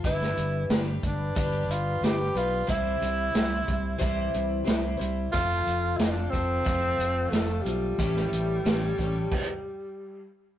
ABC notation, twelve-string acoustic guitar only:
X:1
M:4/4
L:1/8
Q:1/4=90
K:Gmix
V:1 name="Twelve-string acoustic guitar"
[G,DGB]2 [G,DGB]2 [G,DGB]2 [G,DGB] [DGB] | [C,E,G,CEc]2 [G,CEc]2 [C,E,G,CEc]2 [G,CEc] [G,CEc] | [F,A,CFA]2 [A,CFA] [CFA] [F,A,CFA]2 [A,CFA] [CFA] | [A,,E,G,^CGA]2 [G,CGA] [G,CGA] z4 |]